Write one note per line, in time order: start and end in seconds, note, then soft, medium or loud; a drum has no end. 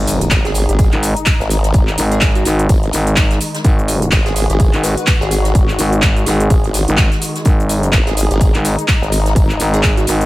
0.00 0.30 G#1 loud
0.00 10.26 D#3 medium
0.00 10.26 G#3 medium
0.00 3.64 D#4 medium
0.00 impact medium
0.07 open hi-hat loud
0.07 tambourine medium
0.07 shaker medium
0.21 closed hi-hat soft
0.21 closed hi-hat medium
0.21 shaker soft
0.31 0.67 G#1 loud
0.31 kick loud
0.31 snare loud
0.31 clap loud
0.31 closed hi-hat medium
0.31 tambourine medium
0.31 shaker soft
0.45 0.51 G#4 medium
0.45 snare soft
0.45 closed hi-hat soft
0.45 shaker soft
0.54 0.64 G#4 medium
0.54 open hi-hat loud
0.54 tambourine medium
0.54 shaker medium
0.69 0.90 G#1 loud
0.69 0.78 G#4 medium
0.69 closed hi-hat medium
0.69 shaker soft
0.79 kick loud
0.79 closed hi-hat medium
0.79 tambourine medium
0.79 shaker soft
0.92 1.14 G#1 loud
0.92 clap soft
0.92 closed hi-hat soft
1.03 open hi-hat loud
1.03 tambourine medium
1.03 shaker medium
1.16 closed hi-hat medium
1.16 shaker soft
1.26 kick loud
1.26 snare loud
1.26 clap loud
1.26 closed hi-hat medium
1.26 tambourine medium
1.26 shaker soft
1.40 1.72 G#1 loud
1.40 snare soft
1.40 shaker soft
1.50 open hi-hat loud
1.50 tambourine medium
1.50 shaker medium
1.63 snare soft
1.63 closed hi-hat medium
1.63 shaker soft
1.74 1.96 G#1 loud
1.74 kick loud
1.74 closed hi-hat medium
1.74 tambourine medium
1.74 shaker soft
1.87 clap soft
1.87 shaker soft
1.98 2.44 G#1 loud
1.98 open hi-hat loud
1.98 tambourine medium
1.98 shaker medium
2.12 2.21 G#4 medium
2.12 closed hi-hat medium
2.12 shaker soft
2.21 kick loud
2.21 snare loud
2.21 clap loud
2.21 closed hi-hat medium
2.21 tambourine medium
2.21 shaker soft
2.35 2.42 F#4 medium
2.35 closed hi-hat soft
2.35 shaker soft
2.45 2.68 G#1 loud
2.45 2.54 F#4 medium
2.45 snare medium
2.45 open hi-hat loud
2.45 tambourine medium
2.45 shaker medium
2.59 closed hi-hat medium
2.59 shaker soft
2.69 2.91 G#1 medium
2.69 kick loud
2.69 closed hi-hat medium
2.69 tambourine medium
2.69 shaker soft
2.83 closed hi-hat soft
2.92 3.39 G#1 loud
2.92 snare soft
2.92 open hi-hat loud
2.92 tambourine medium
2.92 shaker medium
3.07 closed hi-hat medium
3.07 closed hi-hat soft
3.07 shaker soft
3.16 kick loud
3.16 snare loud
3.16 clap loud
3.16 closed hi-hat medium
3.16 tambourine medium
3.16 shaker soft
3.30 snare medium
3.30 closed hi-hat soft
3.30 shaker soft
3.41 open hi-hat loud
3.41 tambourine medium
3.41 shaker medium
3.54 snare soft
3.54 closed hi-hat medium
3.54 shaker soft
3.64 4.11 G#1 loud
3.64 7.44 F#4 medium
3.64 kick loud
3.64 closed hi-hat medium
3.64 tambourine medium
3.64 shaker soft
3.79 shaker soft
3.88 open hi-hat loud
3.88 tambourine medium
3.88 shaker medium
4.02 closed hi-hat soft
4.02 closed hi-hat medium
4.02 shaker soft
4.12 4.48 G#1 loud
4.12 kick loud
4.12 snare loud
4.12 clap loud
4.12 closed hi-hat medium
4.12 tambourine medium
4.12 shaker soft
4.25 4.32 G#4 medium
4.25 snare soft
4.25 closed hi-hat soft
4.25 shaker soft
4.36 4.45 G#4 medium
4.36 open hi-hat loud
4.36 tambourine medium
4.36 shaker medium
4.50 4.71 G#1 loud
4.50 4.59 G#4 loud
4.50 closed hi-hat medium
4.50 shaker soft
4.60 kick loud
4.60 closed hi-hat medium
4.60 tambourine medium
4.60 shaker soft
4.73 4.95 G#1 loud
4.73 clap soft
4.73 closed hi-hat soft
4.84 4.92 B4 medium
4.84 open hi-hat loud
4.84 tambourine medium
4.84 shaker medium
4.97 5.04 B4 medium
4.97 closed hi-hat medium
4.97 shaker soft
5.07 kick loud
5.07 snare loud
5.07 clap loud
5.07 closed hi-hat medium
5.07 tambourine medium
5.07 shaker soft
5.21 5.53 G#1 loud
5.21 5.28 G#4 medium
5.21 snare soft
5.21 shaker soft
5.31 5.40 G#4 medium
5.31 open hi-hat loud
5.31 tambourine medium
5.31 shaker medium
5.45 snare medium
5.45 closed hi-hat medium
5.45 shaker soft
5.55 5.77 G#1 loud
5.55 kick loud
5.55 closed hi-hat medium
5.55 tambourine medium
5.55 shaker soft
5.68 clap soft
5.68 shaker soft
5.79 6.25 G#1 loud
5.79 open hi-hat loud
5.79 tambourine medium
5.79 shaker medium
5.93 closed hi-hat medium
5.93 shaker soft
6.02 kick loud
6.02 snare loud
6.02 clap loud
6.02 closed hi-hat medium
6.02 tambourine medium
6.02 shaker soft
6.16 closed hi-hat soft
6.16 shaker soft
6.26 6.49 G#1 loud
6.26 6.74 G#4 medium
6.26 snare soft
6.26 open hi-hat loud
6.26 tambourine medium
6.26 shaker medium
6.40 closed hi-hat medium
6.40 shaker soft
6.50 6.86 G#1 medium
6.50 kick loud
6.50 closed hi-hat medium
6.50 tambourine medium
6.50 shaker soft
6.64 closed hi-hat soft
6.74 snare soft
6.74 open hi-hat loud
6.74 tambourine medium
6.74 shaker medium
6.88 7.09 G#1 loud
6.88 closed hi-hat soft
6.88 closed hi-hat medium
6.88 shaker soft
6.97 kick loud
6.97 snare loud
6.97 clap loud
6.97 closed hi-hat medium
6.97 tambourine medium
6.97 shaker soft
7.12 snare medium
7.12 closed hi-hat soft
7.12 shaker soft
7.21 open hi-hat loud
7.21 tambourine medium
7.21 shaker medium
7.36 snare soft
7.36 closed hi-hat soft
7.36 shaker soft
7.45 7.92 G#1 loud
7.45 10.26 D#4 medium
7.45 kick loud
7.45 closed hi-hat medium
7.45 tambourine medium
7.45 shaker soft
7.60 shaker soft
7.69 open hi-hat loud
7.69 tambourine medium
7.69 shaker medium
7.83 closed hi-hat medium
7.83 closed hi-hat soft
7.83 shaker soft
7.93 8.29 G#1 loud
7.93 kick loud
7.93 snare loud
7.93 clap loud
7.93 closed hi-hat medium
7.93 tambourine medium
7.93 shaker soft
8.07 8.13 G#4 medium
8.07 snare soft
8.07 closed hi-hat soft
8.07 shaker soft
8.17 8.26 G#4 medium
8.17 open hi-hat loud
8.17 tambourine medium
8.17 shaker medium
8.31 8.52 G#1 loud
8.31 8.40 G#4 medium
8.31 closed hi-hat medium
8.31 shaker soft
8.41 kick loud
8.41 closed hi-hat medium
8.41 tambourine medium
8.41 shaker soft
8.54 8.76 G#1 loud
8.54 clap soft
8.54 closed hi-hat soft
8.65 open hi-hat loud
8.65 tambourine medium
8.65 shaker medium
8.79 closed hi-hat medium
8.79 shaker soft
8.88 kick loud
8.88 snare loud
8.88 clap loud
8.88 closed hi-hat medium
8.88 tambourine medium
8.88 shaker soft
9.02 9.34 G#1 medium
9.02 snare soft
9.02 shaker soft
9.12 open hi-hat loud
9.12 tambourine medium
9.12 shaker medium
9.26 snare soft
9.26 closed hi-hat soft
9.26 shaker soft
9.36 9.58 G#1 loud
9.36 kick loud
9.36 closed hi-hat medium
9.36 tambourine medium
9.36 shaker soft
9.49 clap soft
9.49 shaker soft
9.60 10.06 G#1 loud
9.60 open hi-hat loud
9.60 tambourine medium
9.60 shaker medium
9.74 9.83 G#4 medium
9.74 closed hi-hat medium
9.74 shaker soft
9.83 kick loud
9.83 snare loud
9.83 clap loud
9.83 closed hi-hat medium
9.83 tambourine loud
9.83 shaker soft
9.97 10.04 F#4 medium
9.97 closed hi-hat soft
9.97 shaker soft
10.07 10.26 G#1 medium
10.07 10.16 F#4 medium
10.07 snare soft
10.07 open hi-hat loud
10.07 tambourine medium
10.07 shaker medium
10.21 closed hi-hat medium
10.21 shaker soft